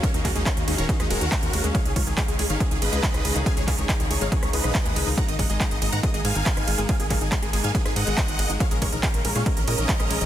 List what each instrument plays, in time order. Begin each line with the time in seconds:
Already playing: string section D#3 A#3 C#4 F#4 F5
0.03 synth pluck G#3, supersaw synth A#4 C#5, kick, closed hi-hat, ride
0.14 analog synth bass D#2, synth pluck D#3, supersaw synth D#4, closed hi-hat
0.25 analog synth bass D#2, synth pluck G#3, supersaw synth F#4 A#4, kick, clap, open hi-hat, ride
0.35 analog synth bass D#2, synth pluck G#3, supersaw synth D#4, closed hi-hat
0.46 synth pluck G#3, supersaw synth A#4 C#5, kick, clap, closed hi-hat, ride
0.57 analog synth bass D#2, synth pluck D#3, supersaw synth D#4, closed hi-hat
0.68 analog synth bass D#2, synth pluck G#3, supersaw synth D#4, open hi-hat, ride
0.78 analog synth bass D#1, synth pluck D#3, supersaw synth A#4 C#5, closed hi-hat
0.89 synth pluck G#3, supersaw synth D#4, kick, closed hi-hat, ride
1.00 analog synth bass D#2, synth pluck G#3, supersaw synth D#4, cross-stick, closed hi-hat
1.10 analog synth bass D#1, synth pluck G#3, supersaw synth F#4 A#4, open hi-hat, ride
1.21 analog synth bass D#2, synth pluck D#3, closed hi-hat
1.32 synth pluck G#3, kick, clap, closed hi-hat, ride
1.43 analog synth bass D#2, synth pluck D#3, closed hi-hat
1.53 analog synth bass D#2, synth pluck G#3, open hi-hat, ride
1.64 analog synth bass D#2, synth pluck G#3, closed hi-hat
1.75 string section C#3 D#4 G#4, supersaw synth C#5 F5, kick, closed hi-hat, ride
1.85 analog synth bass C#2, synth pluck D#3, supersaw synth G#4, closed hi-hat
1.96 analog synth bass C#2, synth pluck G#3, supersaw synth F4 C#5, kick, open hi-hat, ride
2.07 analog synth bass C#2, synth pluck D#3, supersaw synth G#4, closed hi-hat
2.18 synth pluck G#3, supersaw synth C#5 F5, kick, clap, closed hi-hat, ride
2.28 analog synth bass C#2, synth pluck G#3, supersaw synth G#4, closed hi-hat
2.39 analog synth bass C#2, synth pluck G#3, supersaw synth G#4, open hi-hat, ride
2.50 analog synth bass G#1, synth pluck D#3, supersaw synth C#5 F5, closed hi-hat
2.60 synth pluck G#3, supersaw synth G#4, kick, closed hi-hat, ride
2.71 analog synth bass C#2, synth pluck D#3, supersaw synth G#4, closed hi-hat
2.82 analog synth bass G#1, synth pluck G#3, supersaw synth B4 D#5, open hi-hat, ride
2.93 analog synth bass C#2, synth pluck G#3, closed hi-hat
3.03 synth pluck G#3, kick, clap, closed hi-hat, ride
3.14 analog synth bass C#2, synth pluck D#3, cross-stick, closed hi-hat
3.25 analog synth bass C#2, synth pluck G#3, open hi-hat, ride
3.35 analog synth bass C#2, synth pluck D#3, closed hi-hat
3.46 synth pluck G#3, supersaw synth F5 G#5, kick, closed hi-hat, ride
3.57 analog synth bass C#2, synth pluck G#3, supersaw synth C#5, closed hi-hat
3.67 analog synth bass C#2, synth pluck G#3, supersaw synth C#5 F5, kick, clap, open hi-hat, ride
3.78 analog synth bass C#2, synth pluck D#3, supersaw synth C#5, closed hi-hat
3.89 synth pluck G#3, supersaw synth F5 G#5, kick, clap, closed hi-hat, ride
4.00 analog synth bass C#2, synth pluck D#3, supersaw synth C#5, closed hi-hat
4.10 analog synth bass C#2, synth pluck G#3, supersaw synth C#5, open hi-hat, ride
4.21 analog synth bass G#1, synth pluck G#3, supersaw synth C#5 F5, closed hi-hat
4.32 synth pluck G#3, supersaw synth C#5, kick, closed hi-hat, ride
4.42 analog synth bass C#2, synth pluck D#3, supersaw synth C#5, cross-stick, closed hi-hat
4.53 analog synth bass C#2, synth pluck G#3, supersaw synth B4 D#5, open hi-hat, ride
4.64 analog synth bass B1, synth pluck D#3, cross-stick, closed hi-hat
4.75 synth pluck G#3, kick, clap, closed hi-hat, ride
4.85 analog synth bass D#2, synth pluck G#3, closed hi-hat
4.96 analog synth bass C#2, synth pluck G#3, open hi-hat, ride
5.07 analog synth bass C#2, synth pluck D#3, open hi-hat
5.17 synth pluck G#3, string section G#3 A#3, supersaw synth F#5 A#5, kick, ride
5.28 analog synth bass G#1, synth pluck D#3, supersaw synth D#5, closed hi-hat
5.39 analog synth bass G#1, synth pluck G#3, supersaw synth D#5 F#5, kick, open hi-hat, ride
5.50 analog synth bass G#1, synth pluck G#3, supersaw synth D#5, closed hi-hat
5.60 synth pluck G#3, supersaw synth F#5 A#5, kick, clap, closed hi-hat, ride
5.71 analog synth bass G#1, synth pluck D#3, supersaw synth D#5, closed hi-hat
5.82 analog synth bass G#1, synth pluck G#3, supersaw synth D#5, open hi-hat, ride
5.92 analog synth bass G#2, synth pluck D#3, supersaw synth F#5 A#5, closed hi-hat
6.03 synth pluck G#3, supersaw synth D#5, kick, closed hi-hat, ride
6.14 analog synth bass G#1, synth pluck G#3, supersaw synth D#5, closed hi-hat
6.25 analog synth bass G#2, synth pluck G#3, supersaw synth F5 G#5, open hi-hat, ride
6.35 analog synth bass G#1, synth pluck D#3, closed hi-hat
6.46 synth pluck G#3, kick, clap, closed hi-hat, ride
6.57 analog synth bass G#1, synth pluck D#3, cross-stick, closed hi-hat
6.67 analog synth bass G#1, synth pluck G#3, open hi-hat, ride
6.78 analog synth bass G#1, synth pluck G#3, closed hi-hat
6.89 synth pluck G#3, supersaw synth F5 G#5, kick, closed hi-hat, ride
7.00 analog synth bass G#1, synth pluck D#3, supersaw synth G#4, closed hi-hat
7.10 analog synth bass G#1, synth pluck G#3, supersaw synth G#4 F5, kick, clap, open hi-hat, ride
7.21 analog synth bass G#1, synth pluck D#3, supersaw synth G#4, closed hi-hat
7.32 synth pluck G#3, supersaw synth F5 G#5, kick, clap, closed hi-hat, ride
7.42 analog synth bass G#1, synth pluck G#3, supersaw synth G#4, closed hi-hat
7.53 analog synth bass G#1, synth pluck G#3, supersaw synth G#4, open hi-hat, ride
7.64 analog synth bass G#2, synth pluck D#3, supersaw synth F5 G#5, closed hi-hat
7.74 synth pluck G#3, supersaw synth G#4, kick, closed hi-hat, ride
7.85 analog synth bass G#1, synth pluck D#3, supersaw synth G#4, cross-stick, closed hi-hat
7.96 analog synth bass G#2, synth pluck G#3, supersaw synth D#5 F#5, open hi-hat, ride
8.07 analog synth bass G#1, synth pluck G#3, closed hi-hat
8.17 synth pluck G#3, kick, clap, closed hi-hat, ride
8.28 analog synth bass G#1, synth pluck D#3, closed hi-hat
8.39 analog synth bass G#1, synth pluck G#3, open hi-hat, ride
8.50 analog synth bass G#1, synth pluck D#3, closed hi-hat
8.60 synth pluck G#3, string section C#4, supersaw synth C#5 F5, kick, closed hi-hat, ride
8.71 analog synth bass A#1, synth pluck G#3, supersaw synth A#4, closed hi-hat
8.82 analog synth bass A#1, synth pluck G#3, supersaw synth A#4 C#5, kick, open hi-hat, ride
8.92 analog synth bass A#1, synth pluck D#3, supersaw synth A#4, closed hi-hat
9.03 synth pluck G#3, supersaw synth C#5 F5, kick, clap, closed hi-hat, ride
9.14 analog synth bass A#1, synth pluck D#3, supersaw synth A#4, closed hi-hat
9.25 analog synth bass A#1, synth pluck G#3, supersaw synth A#4, open hi-hat, ride
9.35 analog synth bass A#2, synth pluck G#3, supersaw synth C#5 F5, closed hi-hat
9.46 synth pluck G#3, supersaw synth A#4, kick, closed hi-hat, ride
9.57 analog synth bass A#1, synth pluck D#3, supersaw synth A#4, closed hi-hat
9.67 analog synth bass A#2, synth pluck G#3, supersaw synth A#4 D#5, open hi-hat, ride
9.78 analog synth bass A#1, synth pluck D#3, closed hi-hat
9.89 synth pluck G#3, kick, clap, closed hi-hat, ride
10.00 analog synth bass A#1, synth pluck G#3, cross-stick, closed hi-hat
10.10 analog synth bass A#1, synth pluck G#3, open hi-hat, ride
10.21 analog synth bass A#1, synth pluck D#3, closed hi-hat